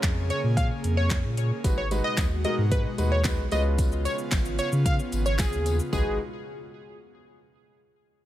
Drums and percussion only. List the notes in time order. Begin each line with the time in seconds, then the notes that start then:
0.03 kick, snare, clap, closed hi-hat
0.30 closed hi-hat
0.57 kick, closed hi-hat
0.84 closed hi-hat
1.10 kick, snare, clap, closed hi-hat
1.37 closed hi-hat
1.64 kick, closed hi-hat, tambourine
1.91 closed hi-hat, tambourine
2.18 kick, snare, clap, closed hi-hat, tambourine
2.45 closed hi-hat
2.71 kick, closed hi-hat, tambourine
2.98 closed hi-hat, tambourine
3.24 kick, snare, clap, closed hi-hat, tambourine
3.52 closed hi-hat, tambourine
3.78 kick, closed hi-hat, tambourine, shaker
3.92 shaker
4.05 closed hi-hat, tambourine, shaker
4.18 shaker
4.32 kick, snare, clap, closed hi-hat, tambourine, shaker
4.45 shaker
4.59 closed hi-hat, tambourine, shaker
4.72 shaker
4.86 kick, closed hi-hat, shaker
4.99 shaker
5.12 closed hi-hat, tambourine, shaker
5.26 shaker
5.39 kick, snare, clap, closed hi-hat, tambourine, shaker
5.53 shaker
5.66 closed hi-hat, tambourine, shaker
5.79 shaker
5.93 kick, floor tom, tambourine